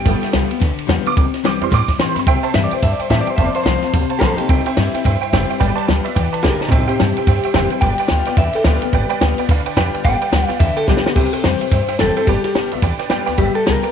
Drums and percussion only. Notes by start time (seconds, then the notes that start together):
0.05 kick, ride
0.23 snare, ride
0.33 snare, ride
0.51 ride
0.62 kick, snare, ride
0.79 ride
0.89 snare, ride
1.06 ride
1.17 kick, ride
1.34 snare, ride
1.45 snare, ride
1.62 ride
1.72 kick, snare, ride
1.88 kick, snare, ride
1.99 snare, ride
2.16 snare, ride
2.27 kick, ride
2.44 ride
2.54 snare, ride
2.71 ride
2.83 kick, ride
2.99 ride
3.10 kick, snare, ride
3.27 ride
3.37 kick, ride
3.55 ride
3.66 snare, ride
3.83 snare, ride
3.94 kick, ride
4.10 ride
4.21 kick, snare, ride
4.38 ride
4.49 kick, ride
4.66 ride
4.77 snare, ride
4.95 snare, ride
5.05 kick, ride
5.23 ride
5.33 kick, snare, ride
5.50 ride
5.61 kick, ride
5.78 ride
5.88 snare, ride
6.05 ride
6.16 kick, ride
6.34 ride
6.44 kick, snare, ride
6.61 snare
6.69 kick, floor tom, ride
6.89 ride
7.00 snare, ride
7.17 ride
7.27 kick, ride
7.43 ride
7.54 kick, snare, ride
7.70 ride
7.81 kick, ride
7.98 ride
8.08 snare, ride
8.25 snare, ride
8.37 kick, ride
8.53 ride
8.64 kick, snare, ride
8.82 ride
8.93 kick, ride
9.10 ride
9.21 snare, ride
9.38 ride
9.49 kick, ride
9.66 ride
9.77 kick, snare, ride
9.94 ride
10.05 kick, ride
10.22 ride
10.33 snare, ride
10.50 snare, ride
10.60 kick, ride
10.77 ride
10.88 kick, snare
10.97 snare
11.06 snare
11.16 kick, crash
11.33 ride
11.44 snare, ride
11.61 ride
11.72 kick, ride
11.88 snare, ride
11.99 snare, ride
12.17 ride
12.27 kick, ride
12.44 snare, ride
12.55 snare, ride
12.71 ride
12.82 kick, ride
12.99 snare, ride
13.10 snare, ride
13.27 snare, ride
13.38 kick, ride
13.55 ride
13.67 snare, ride
13.84 ride